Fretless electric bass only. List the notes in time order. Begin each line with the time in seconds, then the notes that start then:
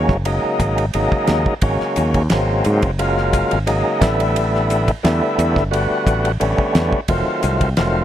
0.09 F#1
0.60 G#1
0.95 G#1
1.12 muted fretless electric bass stroke
1.29 D#2
1.62 G#1
1.81 muted fretless electric bass stroke
1.98 D#2
2.32 G#1
2.66 G#2
2.83 F#1
3.53 G#1
4.02 A1
5.04 E2
5.38 E2
5.56 G1
5.91 muted fretless electric bass stroke
6.06 A1
6.42 A1
6.75 E2
7.09 F1
7.28 muted fretless electric bass stroke
7.44 C2
7.78 F1